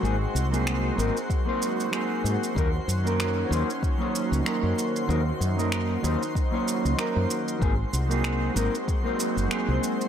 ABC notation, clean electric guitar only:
X:1
M:4/4
L:1/16
Q:"Swing 16ths" 1/4=95
K:Ebdor
V:1 name="Clean electric guitar"
[G,B,CEA] z2 [G,B,CEA]3 [G,B,CEB] z2 [G,B,CEc]3 [G,B,CEA]4 | [G,B,DEB] z2 [G,B,DEB]3 [G,B,DEc] z2 [G,B,DEd]3 [G,B,DEB]4 | [G,B,DEB] z2 [G,B,DEB]3 [G,B,DEc] z2 [G,B,DEd]3 [G,B,DEB]4 | [G,B,CEA] z2 [G,B,CEA]3 [G,B,CEB] z2 [G,B,CEc]3 [G,B,CEA]4 |]